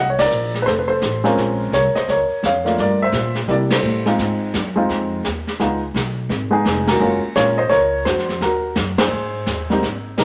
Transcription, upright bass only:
0.00 0.30 C2 medium
0.30 0.65 A#1 medium
0.66 1.00 F1 medium
1.02 1.36 A1 medium
1.37 1.71 A#1 medium
1.72 1.93 C2 medium
1.95 muted upright bass stroke soft
2.08 2.28 C#2 medium
2.29 muted upright bass stroke soft
2.43 2.77 F2 medium
2.77 3.12 G2 medium
3.12 3.47 A#2 medium
3.48 3.82 C3 medium
3.82 4.17 A2 medium
4.18 4.52 G#2 medium
4.54 4.88 F#2 medium
4.89 5.23 F2 medium
5.25 5.59 D#2 medium
5.60 5.94 C#2 medium
5.94 6.29 B1 medium
6.29 6.64 G#1 medium
6.65 6.99 F1 medium
7.00 7.21 F#1 medium
7.36 7.70 A#1 medium
7.70 8.04 C#2 medium
8.05 8.40 F2 medium
8.41 8.75 D#2 medium
8.76 9.10 F#2 medium
9.11 9.45 G#2 medium
9.46 9.81 D#2 medium
9.82 10.16 G#1 medium
10.18 10.24 C2 medium

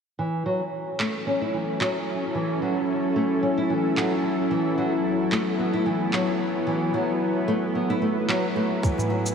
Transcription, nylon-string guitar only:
0.19 0.44 E3 medium
0.46 0.60 F#3 medium
0.99 1.14 A3 medium
1.27 1.40 C#4 medium
1.41 1.52 E4 medium
1.54 1.80 E3 medium
1.81 1.95 F#3 medium
2.35 2.61 E3 medium
2.62 2.76 F#3 medium
3.16 3.30 A3 medium
3.43 3.56 C#4 medium
3.58 3.69 E4 medium
3.70 3.96 E3 medium
3.97 4.11 F#3 medium
4.51 4.77 E3 medium
4.78 4.92 F#3 medium
5.32 5.46 A3 medium
5.59 5.72 B3 medium
5.73 5.85 E4 medium
5.86 6.12 E3 medium
6.13 6.27 F#3 medium
6.67 6.93 E3 medium
6.94 7.08 F#3 medium
7.48 7.62 A3 medium
7.75 7.89 B3 medium
7.90 8.01 E4 medium
8.02 8.15 A3 medium
8.29 8.43 F#3 medium
8.56 8.70 A3 medium
8.83 9.09 E3 medium
9.10 9.24 F#3 medium

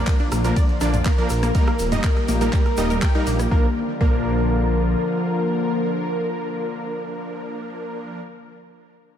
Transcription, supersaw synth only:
0.44 0.56 F3 medium
0.44 0.56 A#3 medium
0.44 0.56 D4 medium
0.44 0.56 A#4 medium
0.81 0.93 F3 medium
0.81 0.93 A#3 medium
0.81 0.93 D4 medium
0.81 0.93 D5 medium
1.18 1.29 F3 medium
1.18 1.29 A#3 medium
1.18 1.29 D4 medium
1.18 1.29 A#4 medium
1.55 1.67 G3 loud
1.55 1.67 A#3 loud
1.55 1.67 D#4 medium
1.55 1.67 A#4 loud
1.92 2.03 G3 loud
1.92 2.03 A#3 medium
1.92 2.03 D#4 medium
1.92 2.03 D#5 loud
2.41 2.52 G3 medium
2.41 2.52 A#3 medium
2.41 2.52 D#4 medium
2.41 2.52 A#4 medium
2.78 2.90 G3 medium
2.78 2.90 A#3 medium
2.78 2.90 D#4 medium
2.78 2.90 D#5 loud
3.15 3.26 G3 medium
3.15 3.26 A#3 medium
3.15 3.26 D#4 medium
3.15 3.26 A#4 medium
3.51 3.65 F3 medium
3.51 3.65 A#3 medium
3.51 3.65 D4 medium
3.51 3.65 A#4 loud
4.01 8.21 F3 medium
4.01 8.21 A#3 medium
4.01 8.21 D4 medium
4.01 8.21 A#4 medium

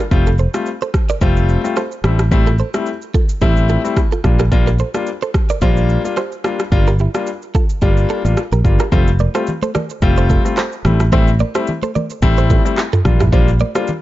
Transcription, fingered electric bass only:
0.11 0.46 F1 loud
1.21 1.56 F1 loud
2.04 2.61 A1 medium
3.42 3.76 A1 loud
4.24 4.81 A#1 medium
5.62 5.96 A#1 loud
6.72 7.06 G1 loud
7.82 8.04 G1 loud
8.25 8.35 A1 medium
8.52 8.62 A#1 medium
8.65 8.77 G1 medium
8.92 9.27 F1 loud
10.02 10.37 F1 loud
10.85 11.41 A1 medium
12.22 12.57 A1 loud
13.05 13.62 A#1 loud

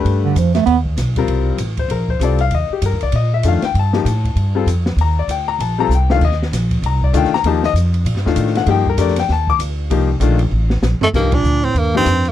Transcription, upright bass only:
0.05 0.35 G2 medium
0.35 0.65 F2 medium
0.66 0.96 D#2 medium
0.97 1.27 B1 medium
1.27 1.57 C2 medium
1.58 1.88 A1 medium
1.89 2.19 A#1 medium
2.19 2.50 C2 medium
2.51 2.68 D#2 medium
2.70 muted upright bass stroke soft
2.82 2.93 G2 medium
2.92 3.02 D#2 medium
3.03 3.12 C2 medium
3.13 3.43 A#2 medium
3.44 3.61 F2 medium
3.62 muted upright bass stroke soft
3.74 4.04 G2 medium
4.05 4.35 A2 medium
4.35 4.66 G2 medium
4.66 4.96 F2 medium
4.97 5.27 D#2 medium
5.28 5.58 D2 medium
5.59 5.88 A#1 medium
5.89 6.20 C2 medium
6.21 6.51 D#2 medium
6.52 6.82 A#1 medium
6.82 7.12 C2 medium
7.13 7.31 D2 medium
7.31 muted upright bass stroke soft
7.44 7.73 D#2 medium
7.73 8.04 F2 medium
8.05 8.14 A#2 medium
8.14 8.25 G2 medium
8.26 8.36 D#2 medium
8.36 8.66 A2 medium
8.67 8.96 G2 medium
8.97 9.27 F2 medium
9.29 9.58 D#2 medium
9.59 9.89 D2 medium
9.90 10.19 C2 medium
10.20 10.50 A#1 medium
10.51 10.82 A1 medium
10.82 11.00 A#1 medium
11.13 11.43 C2 medium
11.43 11.74 D2 medium
11.74 12.05 D#2 medium
12.06 12.32 F2 medium

